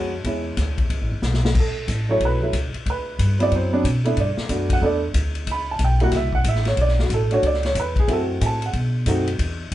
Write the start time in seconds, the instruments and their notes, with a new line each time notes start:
Already playing: upright bass F2, grand piano G#3 B3 C#4 F#4 C#5 A5
0.24 upright bass E2, grand piano G#3 B3 C#4 E4, kick, ride
0.57 upright bass D2, kick, snare, hi-hat pedal, ride
0.78 kick, ride
0.90 upright bass C#2, kick, ride
1.01 upright bass A1
1.12 upright bass G#1
1.22 upright bass B1, snare, hi-hat pedal
1.34 snare
1.45 snare
1.55 upright bass D2, kick, crash
1.59 grand piano A4
1.88 upright bass A1, kick, hi-hat pedal, ride
2.09 grand piano F#3 A3 C#4 E4 C#5
2.20 upright bass B1, kick, ride
2.25 grand piano B4
2.42 grand piano F#3 A3 C#4 E4
2.53 upright bass C#2, kick, hi-hat pedal, ride
2.74 muted upright bass stroke, ride
2.86 upright bass D2, kick, ride
2.90 grand piano B4
3.19 upright bass G2, kick, hi-hat pedal, ride
3.39 grand piano F#3 B3 C4 E4 D5, ride
3.51 upright bass F#2, kick, ride
3.56 grand piano C5
3.72 grand piano F#3 B3 C4 D4
3.84 upright bass B2, kick, hi-hat pedal, ride
4.05 grand piano A3 B3 D4 E4, ride
4.17 upright bass G2, grand piano D5, kick, ride
4.37 muted upright bass stroke, snare
4.49 upright bass F#2, grand piano A3 B3 D4 F#4, kick, hi-hat pedal, ride
4.70 grand piano F#5, kick, ride
4.81 upright bass E2, grand piano A3 B3 D4 A4, kick
4.86 grand piano D5
5.14 upright bass D2, kick, hi-hat pedal, ride
5.35 ride
5.46 upright bass C#2, kick, ride
5.52 grand piano B5
5.71 grand piano A5
5.79 upright bass B1, kick, hi-hat pedal, ride
5.84 grand piano G5
6.00 grand piano G3 A#3 E4 F#4 F#5, ride
6.11 upright bass C2, kick, snare, ride
6.16 grand piano E5
6.32 grand piano F#5, kick
6.44 upright bass A1, kick, hi-hat pedal, ride
6.49 grand piano E5
6.55 snare
6.65 grand piano C#5, snare, ride
6.77 upright bass B1, kick, ride
6.81 grand piano D5
6.88 snare
6.99 grand piano F#4, snare
7.10 upright bass A1, kick, hi-hat pedal, ride
7.14 grand piano A4
7.31 grand piano A3 C#4 D4 F#4 C#5, ride
7.42 upright bass C#2, kick, ride
7.47 grand piano D5
7.54 snare
7.63 grand piano C#5, snare, ride
7.75 upright bass E2, kick, hi-hat pedal, ride
7.80 grand piano B4
7.96 grand piano G#4, kick, ride
8.08 upright bass F#2, grand piano A3 C4 E4 F#4, kick, ride
8.13 grand piano A4
8.41 upright bass A2, grand piano G#5, kick, hi-hat pedal, ride
8.46 grand piano A5
8.62 ride
8.66 grand piano F#5
8.73 upright bass B2, kick, ride
9.06 upright bass F#2, grand piano A3 C4 D#4 F#4, kick, hi-hat pedal, ride
9.27 ride
9.39 upright bass E2, kick, ride